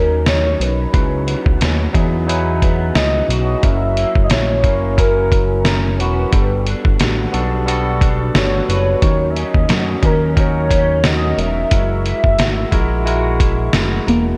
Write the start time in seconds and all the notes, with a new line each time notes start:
Already playing: D#2 D#3 F#3 C#4 D#4 A#4
0.26 D#4 C#5, snare, closed hi-hat
0.60 B1 B4, closed hi-hat
0.92 C#2 C#3 F#3 D#4 E4 B4, kick, closed hi-hat
1.27 B3, closed hi-hat
1.46 C#2, kick
1.61 D#2 C#4, snare, closed hi-hat
1.92 E2 F#3 B3 D#4 E4 G#4, kick, closed hi-hat
2.27 F#3 C#4 D#4 E4 B4, closed hi-hat
2.62 B3, kick, closed hi-hat
2.95 C#2 C#4 D#5, snare, closed hi-hat
3.29 B1 F#4 D#5, closed hi-hat
3.62 F#1 F#2 F#3 C#4 E4 A#4 E5, kick, closed hi-hat
3.97 A#3, closed hi-hat
4.15 F#1, kick
4.24 D#5
4.30 A#1 C#4 C#5, snare, closed hi-hat
4.63 F#1 F#3 A#3 C#4 E4 A#4, kick, closed hi-hat
4.96 F#3 C#4 E4 A#4, kick, closed hi-hat
5.32 kick, closed hi-hat
5.65 C#4 A#4, snare, closed hi-hat
5.99 E1 F#4 B4, closed hi-hat
6.31 G1 G3 B3 F#4 A4, kick, closed hi-hat
6.67 D4, closed hi-hat
6.85 G1, kick
7.00 A1 F#4, snare, closed hi-hat
7.32 B1 G3 B3 D4 F#4 A4, closed hi-hat
7.66 G3 B3 F#4 A4, closed hi-hat
8.01 D4, kick, closed hi-hat
8.34 G1 F#4 C#5, snare, closed hi-hat
8.68 F#1 B4 C#5, closed hi-hat
9.01 D#2 D#3 F#3 C#4 D#4 A#4, kick, closed hi-hat
9.30 E5
9.36 C#4 D#5, closed hi-hat
9.54 D#2, kick
9.69 F#2 F#4, snare, closed hi-hat
10.02 D#2 F#3 C#4 D#4 A#4, kick, closed hi-hat
10.36 F#3 C#4 D#4 F#4 A#4 C#5, kick, closed hi-hat
10.69 C#4, kick, closed hi-hat
11.03 F#4 D#5, snare, closed hi-hat
11.37 E1 A#4 E5, closed hi-hat
11.71 F#1 F#3 G#3 E4 F#4 A#4, kick, closed hi-hat
12.05 E4, closed hi-hat
12.24 F#1, kick
12.38 G#1 F#4, snare, closed hi-hat
12.71 A#1 G#3 E4 F#4 A#4, kick, closed hi-hat
13.05 G#3 E4 F#4 A#4, closed hi-hat
13.40 E4, kick, closed hi-hat
13.73 F#1 F#4, snare, closed hi-hat
14.07 E1 A#3 A#4, closed hi-hat